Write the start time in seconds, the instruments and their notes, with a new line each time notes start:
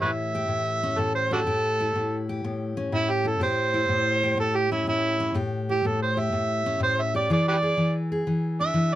Already playing: steel-string acoustic guitar E3 E4 G4
0.02 steel-string acoustic guitar A2, harmonica B4 C#5 E5
0.35 steel-string acoustic guitar G4
0.48 steel-string acoustic guitar A2
0.83 steel-string acoustic guitar C#4
0.98 steel-string acoustic guitar A2, harmonica A4
1.15 harmonica C5
1.31 harmonica D4 F#4 A4, steel-string acoustic guitar G4
1.47 steel-string acoustic guitar A2 G4
1.80 steel-string acoustic guitar E4
1.96 steel-string acoustic guitar A2
2.29 steel-string acoustic guitar G4
2.44 steel-string acoustic guitar A2
2.77 steel-string acoustic guitar C#4
2.92 steel-string acoustic guitar A2, harmonica E4
3.11 harmonica G4
3.25 steel-string acoustic guitar E4, harmonica A4
3.40 steel-string acoustic guitar A2 G4, harmonica C5
3.74 steel-string acoustic guitar E4
3.89 steel-string acoustic guitar A2
4.23 steel-string acoustic guitar G4
4.37 steel-string acoustic guitar A2, harmonica A4
4.56 harmonica G4
4.72 steel-string acoustic guitar C#4, harmonica E4
4.87 steel-string acoustic guitar A2, harmonica E4
5.20 steel-string acoustic guitar C#4
5.34 steel-string acoustic guitar A2 G4
5.69 steel-string acoustic guitar E4, harmonica G4
5.85 steel-string acoustic guitar A2, harmonica A4
6.02 harmonica C5
6.17 steel-string acoustic guitar G4, harmonica E5
6.32 steel-string acoustic guitar A2
6.66 steel-string acoustic guitar C#4
6.80 steel-string acoustic guitar A2, harmonica C5
7.01 harmonica E5
7.15 steel-string acoustic guitar G4, harmonica D5
7.30 steel-string acoustic guitar E3 G#4, harmonica D5
7.48 harmonica G4 B4 D5
7.63 steel-string acoustic guitar G#4
7.77 steel-string acoustic guitar E3
8.12 steel-string acoustic guitar G#4
8.27 steel-string acoustic guitar E3
8.60 steel-string acoustic guitar D4, harmonica E5
8.74 steel-string acoustic guitar E3